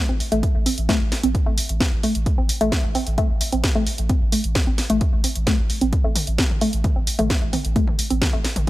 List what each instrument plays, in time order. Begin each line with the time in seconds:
0.09 sub bass A1, synth arpeggio sound C4
0.20 open hi-hat
0.32 sub bass A1, synth arpeggio sound A3, closed hi-hat
0.43 kick, closed hi-hat
0.55 sub bass A1
0.66 synth arpeggio sound C4, open hi-hat
0.78 sub bass A1, closed hi-hat
0.89 synth arpeggio sound A3, kick, snare, closed hi-hat
1.01 sub bass A1
1.12 snare, open hi-hat
1.23 sub bass A1, synth arpeggio sound C4, closed hi-hat
1.35 kick, closed hi-hat
1.46 sub bass A1, synth arpeggio sound A3
1.58 open hi-hat
1.69 sub bass A1, closed hi-hat
1.80 synth arpeggio sound C4, kick, snare, closed hi-hat
1.92 sub bass A1
2.03 synth arpeggio sound A3, open hi-hat
2.15 sub bass A1, closed hi-hat
2.26 kick, closed hi-hat
2.38 sub bass A1, synth arpeggio sound C4
2.49 open hi-hat
2.61 sub bass A1, synth arpeggio sound A3, closed hi-hat
2.72 kick, snare, closed hi-hat
2.84 sub bass A1
2.95 synth arpeggio sound C4, open hi-hat
3.07 sub bass A1, closed hi-hat
3.18 synth arpeggio sound A3, kick, closed hi-hat
3.30 sub bass A1
3.41 open hi-hat
3.52 sub bass A1, synth arpeggio sound C4, closed hi-hat
3.64 kick, snare, closed hi-hat
3.75 sub bass A1, synth arpeggio sound A3
3.87 open hi-hat
3.98 sub bass A1, closed hi-hat
4.09 synth arpeggio sound C4, kick, closed hi-hat
4.21 sub bass A1
4.32 synth arpeggio sound A3, open hi-hat
4.44 sub bass A1, closed hi-hat
4.55 kick, snare, closed hi-hat
4.67 sub bass A1, synth arpeggio sound C4
4.78 snare, open hi-hat
4.90 sub bass A1, synth arpeggio sound A3, closed hi-hat
5.01 kick, closed hi-hat
5.13 sub bass A1
5.24 synth arpeggio sound C4, open hi-hat
5.36 sub bass A1, closed hi-hat
5.47 synth arpeggio sound A3, kick, snare, closed hi-hat
5.59 sub bass A1
5.70 open hi-hat
5.81 sub bass A1, synth arpeggio sound C4, closed hi-hat
5.93 kick, closed hi-hat
6.04 sub bass A1, synth arpeggio sound A3
6.16 open hi-hat, mid tom
6.27 sub bass A1, closed hi-hat
6.38 synth arpeggio sound C4, kick, snare, closed hi-hat
6.50 sub bass A1, mid tom
6.61 synth arpeggio sound A3, open hi-hat
6.73 sub bass A1, closed hi-hat
6.84 kick, closed hi-hat, mid tom
6.96 sub bass A1, synth arpeggio sound C4
7.07 open hi-hat
7.19 sub bass A1, synth arpeggio sound A3, closed hi-hat, mid tom
7.30 kick, snare, closed hi-hat
7.42 sub bass A1
7.53 synth arpeggio sound C4, open hi-hat, mid tom
7.65 sub bass A1, closed hi-hat
7.76 synth arpeggio sound A3, kick, closed hi-hat
7.88 sub bass A1, mid tom
7.99 open hi-hat
8.10 sub bass A1, synth arpeggio sound C4, closed hi-hat
8.22 kick, snare, closed hi-hat, mid tom
8.33 sub bass A1, synth arpeggio sound A3
8.44 snare, open hi-hat
8.56 sub bass A1, closed hi-hat, mid tom